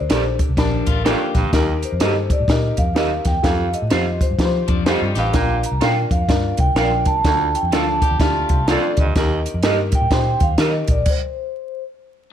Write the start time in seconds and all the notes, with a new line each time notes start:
Already playing: C5
0.01 D2
0.09 A#1 D4 G4 A4 A#4 D5, snare, closed hi-hat
0.39 kick, closed hi-hat
0.49 C2
0.57 A#1 F3 D4 G4 A#4 A5, kick, snare, closed hi-hat
0.87 A1 A3 F4, kick, closed hi-hat
1.04 F2 A#3 D4 G4 A4 A#4 D5, snare, closed hi-hat
1.12 A#4
1.35 A#1 G2, kick, snare, closed hi-hat
1.44 D2
1.52 D#2 D#4 G4 A#4, kick, snare, closed hi-hat
1.82 C5, closed hi-hat
1.92 F2
2.00 G2 D#4 F#4 G4 A4 A#4 D#5, snare, closed hi-hat
2.06 G4
2.30 D5, kick, closed hi-hat
2.40 A2
2.48 A#2 D#4 G4 A#4 D#5, kick, snare, closed hi-hat
2.77 F2 F5, kick, closed hi-hat
2.94 D#2 D#4 G4 A#4 D#5, snare, closed hi-hat
3.25 E2 G5, kick, snare, closed hi-hat
3.42 F2 F4 G4 A4 F5, kick, snare, closed hi-hat
3.73 D#5, closed hi-hat
3.82 A2
3.90 F2 C4 F4 G4 A4 C5 F5, snare, closed hi-hat
4.21 C5, kick, closed hi-hat
4.31 G2
4.38 F3 F4 G4 B4, kick, snare, closed hi-hat
4.45 C5
4.68 F2 F3 D4, kick, closed hi-hat
4.85 F2 G3 C4 D#4 F4 G4 A4 C5 D#5 F5, snare, closed hi-hat
5.02 G2
5.15 A1 G2 G4 F5, snare, closed hi-hat
5.32 A#1 A#2 D4 F4 A#4, kick, snare, closed hi-hat
5.63 A#5, closed hi-hat
5.72 C2
5.81 A#2 D4 F4 A4 A#4 D5 F5 G5, snare, closed hi-hat
5.87 A#4
6.11 F2 F5, kick, closed hi-hat
6.28 G2 D4 F4 A#4, kick, snare, closed hi-hat
6.57 C2 G5, kick, closed hi-hat
6.75 A#1 C#4 F4 A#4 D5 F5, snare, closed hi-hat
6.83 D4
7.05 C#2 A5, kick, closed hi-hat
7.25 D2 D4 F4 A4, kick, snare, closed hi-hat
7.55 G5, closed hi-hat
7.63 F2
7.71 D2 F3 D4 D#4 F4 A4 D5 F5 A5, snare, closed hi-hat
7.79 F4
8.02 G4, kick, closed hi-hat
8.11 D#2
8.20 D2 A3 D4 E4 F4 G4, kick, snare, closed hi-hat
8.27 F4
8.49 C2, kick, closed hi-hat
8.68 F2 D4 F4 A4 D5 F5, snare, closed hi-hat
8.97 D2 G2 D#5, kick, closed hi-hat
9.06 D2
9.16 D#2 D#4 G4 A#4, kick, snare, closed hi-hat
9.46 closed hi-hat
9.54 F2
9.63 G2 D#4 G4 A4 A#4 D#5, snare, closed hi-hat
9.70 A#4
9.92 G5, kick, closed hi-hat
10.01 A2
10.11 A#2 D#4 G4 C5, kick, snare, closed hi-hat
10.40 D#2 F5, kick, closed hi-hat
10.58 D#3 D#4 G4 A#4 D#5, snare, closed hi-hat
10.87 A#1 D5, kick, closed hi-hat
11.06 kick, crash
11.10 C5